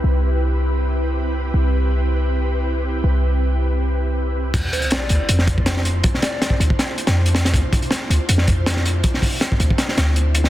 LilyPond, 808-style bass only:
\new Staff \with { instrumentName = "808-style bass" } { \clef bass \time 4/4 \key d \dorian \tempo 4 = 160 c,1 | c,1 | c,1 | d,16 r4 r16 d,16 r16 f,2 |
r4. d,16 r4 f,4~ f,16 | d,16 r4 r16 d,16 r16 f,2 | r4. d,16 r8. d,4. | }